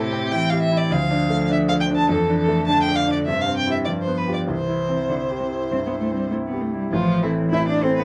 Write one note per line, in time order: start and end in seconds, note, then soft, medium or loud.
0.00 0.87 A2 medium
0.00 0.35 C3 medium
0.00 0.24 E4 soft
0.00 0.33 G4 medium
0.13 0.44 C4 soft
0.31 0.94 E3 medium
0.31 0.63 E4 soft
0.31 0.51 G5 medium
0.50 0.83 G4 soft
0.50 0.61 F5 medium
0.62 0.79 E5 medium
0.71 0.91 E4 soft
0.77 0.94 D5 medium
0.90 2.05 D2 medium
0.90 2.09 F3 medium
0.90 1.51 F5 medium
1.11 1.42 D4 soft
1.30 1.62 A3 soft
1.50 1.81 D4 soft
1.50 1.57 E5 medium
1.68 2.01 A4 soft
1.68 1.74 F5 medium
1.80 1.86 G5 medium
1.90 2.10 D4 soft
1.96 2.09 A5 medium
2.09 3.24 F2 medium
2.09 2.67 E3 medium
2.09 2.37 A4 medium
2.30 2.61 D4 soft
2.38 2.66 A4 medium
2.48 2.80 A3 soft
2.67 3.26 D3 soft
2.67 3.00 D4 soft
2.67 2.82 A5 medium
2.83 2.97 G5 medium
2.88 3.19 A4 soft
2.95 3.11 F5 medium
3.07 3.27 D4 soft
3.12 3.18 D5 medium
3.26 3.85 G2 medium
3.26 3.88 C3 soft
3.26 3.42 E5 medium
3.41 3.56 F5 medium
3.46 3.79 C4 soft
3.57 3.71 G5 medium
3.66 3.85 E4 soft
3.66 3.85 G4 soft
3.71 3.77 E5 medium
3.85 4.46 G2 soft
3.85 4.50 F3 soft
3.85 3.91 D5 medium
4.02 4.19 C5 medium
4.07 4.40 B3 soft
4.17 4.33 B4 medium
4.28 4.46 F4 soft
4.28 4.46 G4 soft
4.34 4.40 D5 medium
4.48 5.67 C2 soft
4.48 5.03 E3 soft
4.48 6.29 C5 medium
4.68 5.01 E4 soft
4.89 5.22 C4 soft
5.08 5.16 D3 soft
5.08 5.43 E4 soft
5.30 5.63 G4 soft
5.39 5.47 C3 soft
5.52 5.84 E4 soft
5.71 6.03 G2 soft
5.71 5.78 C4 soft
5.86 5.92 B3 soft
5.92 6.24 E4 soft
6.00 6.14 A3 soft
6.12 6.29 G3 soft
6.12 6.44 C4 soft
6.30 6.36 A3 soft
6.30 6.64 E4 soft
6.47 6.63 B3 soft
6.52 6.85 G4 soft
6.61 6.76 A3 soft
6.73 6.91 G3 soft
6.73 6.93 E4 soft
6.92 7.22 A1 soft
6.92 7.22 A2 soft
6.92 7.24 F3 medium
6.92 7.20 F4 medium
7.22 7.51 E3 medium
7.22 7.50 C4 soft
7.22 7.30 E4 soft
7.22 7.50 E4 soft
7.22 7.50 A4 soft
7.51 7.82 A1 soft
7.51 7.82 A2 soft
7.51 7.67 E4 medium
7.51 7.59 E5 medium
7.67 7.85 D4 medium
7.67 7.80 D5 medium
7.81 8.04 C4 soft
7.81 8.01 C4 medium
7.81 8.04 E4 soft
7.81 8.04 A4 soft
7.81 7.95 C5 medium
7.96 8.04 B3 medium
7.96 8.04 B4 soft